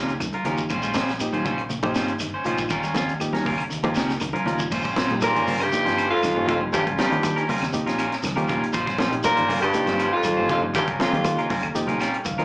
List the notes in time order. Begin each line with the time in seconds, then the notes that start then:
Already playing: C#2 F3 G3 A#3 C#4 D#4 F4 G4 A#4
0.08 closed hi-hat, shekere
0.20 C#2 D#3, closed hi-hat, high conga, low conga, claves, shekere
0.33 F4 A#4, muted clean electric guitar stroke, closed hi-hat, high conga
0.44 D#2 F3 A#3 C#4 D#4 F4 G4 A#4, muted clean electric guitar stroke, closed hi-hat, low conga, shekere
0.58 kick, shekere
0.69 A#1 G3 C#4 F4 C5, kick, closed hi-hat, high conga, claves, shekere
0.82 G#3 C#4 F4 C5, closed hi-hat, shekere
0.94 F3 G3 C#4 F4 C5, kick, snare, closed hi-hat, high conga, shekere
1.07 snare, closed hi-hat, shekere
1.20 F3 A#3 D#4 G4, closed hi-hat, high conga, claves, shekere
1.33 D#3 C#4 F4 C5, closed hi-hat, high conga
1.45 A#1 G3 C#4 F4 C5, kick, closed hi-hat, high conga, low conga, shekere
1.58 C#3, closed hi-hat, claves
1.69 A#1 C#3, closed hi-hat, high conga, low conga, shekere
1.83 F3 G3 A#3 C#4 D#4 F4 G4 C5, kick, high conga
1.95 G1 G3 C#4 F4 C5, snare, closed hi-hat, claves, shekere
2.08 closed hi-hat, shekere
2.19 G1 D#3, closed hi-hat, high conga, claves, shekere
2.34 C#4 C5
2.44 A#1 F3 G3 A#3 C#4 D#4 F4 C5, closed hi-hat, low conga, shekere
2.58 kick, shekere
2.69 D#2 G3 C#4 F4 A#4, muted clean electric guitar stroke, kick, closed hi-hat, high conga, claves, shekere
2.83 G3 C#4 F4 A#4, closed hi-hat, shekere
2.94 F3 G3 C#4 F4, kick, snare, closed hi-hat, high conga, shekere
3.09 closed hi-hat, shekere
3.20 F3 A#3 D#4 G4, closed hi-hat, high conga, claves, shekere
3.33 D#3 C#4 A#4, muted clean electric guitar stroke, snare, closed hi-hat, high conga
3.45 D#2 G3 C#4 F4 A#4, kick, open hi-hat, high conga, low conga, shekere
3.58 C#3, closed hi-hat, claves
3.70 D#2 C#3, closed hi-hat, high conga, shekere
3.83 F3 A#3 C#4 D#4 F4 G4 A#4, kick, closed hi-hat, high conga
3.95 C#2 G3 C#4 A#4, snare, closed hi-hat, claves, shekere
4.09 snare, closed hi-hat, shekere
4.20 C#2 D#3, closed hi-hat, high conga, claves, shekere
4.33 C#4 F4 A#4, closed hi-hat, high conga
4.45 D#2 F3 G3 A#3 C#4 D#4 F4 A#4, closed hi-hat, low conga, shekere
4.59 kick, low conga, shekere
4.71 A#1 F3 G3 C#4 F4 C5, kick, crash, claves, shekere
4.84 G3 C#4 F4 C5, kick, closed hi-hat
4.96 A#1 F3 G3 C#4 F4 C5, snare, closed hi-hat, high conga, shekere
5.09 A#2 F3 A#3 D#4 G4, closed hi-hat, high conga
5.21 A#2 A#4, closed hi-hat, high conga, claves, shekere
5.35 G1 D#3 C#4 F4 C5, closed hi-hat
5.46 G3 C#4 F4 C5, open hi-hat, high conga, low conga, shekere
5.60 G2 C#3 G4, closed hi-hat, claves
5.72 C#3 F3 A#3 D#4 G4, muted fingered electric bass stroke, closed hi-hat, shekere
5.85 G1 F3 C#4 F4 C5, snare, closed hi-hat
5.96 G3 C#4 C5, closed hi-hat, claves, shekere
6.10 F2 F4
6.23 D#3, muted fingered electric bass stroke, snare, closed hi-hat, high conga, claves, shekere
6.35 G1 F3 A#3 C#4 D#4 F4 G4, muted clean electric guitar stroke
6.47 F2 F3 G3 C#4 F4 C5, kick, closed hi-hat, low conga, shekere
6.61 high conga
6.73 D#2 G2 F3 G3 C#4 F4 G4 A#4, kick, closed hi-hat, claves, shekere
6.86 C#2 G3 C#4 F4, muted clean electric guitar stroke, kick, closed hi-hat
6.98 G2 G3 C#4 F4 G4 A#4, muted fingered electric bass stroke, snare, closed hi-hat, high conga, shekere
7.11 D#3 F3 A#3 D#4 G4, closed hi-hat
7.23 closed hi-hat, high conga, claves, shekere
7.36 D#3 C#4 A#4, muted clean electric guitar stroke, closed hi-hat
7.48 G3 C#4 F4 A#4, open hi-hat, high conga, low conga, shekere
7.62 D#2 C#3, snare, closed hi-hat, claves
7.73 C#3 F3 A#3 D#4 G4, closed hi-hat, shekere
7.86 A#1 F3 C#4 F4 A#4, snare, closed hi-hat
7.99 G3 C#4 F4 A#4, closed hi-hat, claves, shekere
8.12 snare, closed hi-hat
8.23 C#2 D#3, snare, closed hi-hat, high conga, claves, shekere
8.36 D#3 F3 A#3 C#4 D#4 F4 G4 A#4, closed hi-hat, high conga
8.47 A#1 F3 G3 C#4 F4 A#4, kick, closed hi-hat, low conga, shekere
8.63 muted fingered electric bass stroke, closed hi-hat
8.73 A#1 F3 G3 F4 C5, muted clean electric guitar stroke, kick, closed hi-hat, claves, shekere
8.86 G3 C#4 F4 C5, kick, snare, closed hi-hat
8.98 A#1 F3 G3 C#4 F4 C5, snare, closed hi-hat, high conga, shekere
9.11 A#2 F3 A#3 D#4 G4, closed hi-hat
9.23 A#2 A#4, closed hi-hat, high conga, claves, shekere
9.36 G1 D#3 C#4 F4 C5, closed hi-hat
9.47 G3 C#4 F4 C5, open hi-hat, high conga, low conga, shekere
9.62 G2 G4, closed hi-hat, claves
9.73 C#3 F3 A#3 D#4 G4, muted fingered electric bass stroke, closed hi-hat, shekere
9.86 G1 F3 C#4 F4 C5, snare, closed hi-hat, high conga
9.99 G3 C#4 F4 C5, closed hi-hat, claves, shekere
10.13 F2 F4
10.23 D#3, muted fingered electric bass stroke, closed hi-hat, high conga, claves, shekere
10.37 G1 F3 A#3 C#4 D#4 F4 G4 C5
10.49 F2 F3 G3 C#4 F4 C5, kick, closed hi-hat, low conga, shekere
10.63 high conga
10.74 D#2 G2 F3 G3 C#4 F4 G4 A#4, kick, closed hi-hat, claves, shekere
10.87 C#2 G3 C#4 F4 A#4, kick, closed hi-hat
10.99 F2 F3 G3 C#4 F4 A#4, muted fingered electric bass stroke, snare, closed hi-hat, high conga, shekere
11.03 F2
11.13 D#3 F3 A#3 D#4 G4, closed hi-hat, high conga
11.24 closed hi-hat, high conga, claves, shekere
11.37 C#3 C#4 F4 A#4, closed hi-hat
11.50 G3 C#4 F4 A#4, kick, open hi-hat, high conga, low conga, shekere
11.63 D#2 C#3, closed hi-hat, claves
11.74 C#3 F3 A#3 D#4 G4, closed hi-hat, shekere
11.87 A#1 F3 C#4 F4 A#4, closed hi-hat, high conga, low conga
12.00 G3 C#4 F4 A#4 G5, snare, closed hi-hat, claves, shekere
12.14 closed hi-hat
12.25 C#2 D#3 F5, kick, closed hi-hat, high conga, claves, shekere
12.38 D#3 F3 A#3 C#4 D#4 F4 A#4, closed hi-hat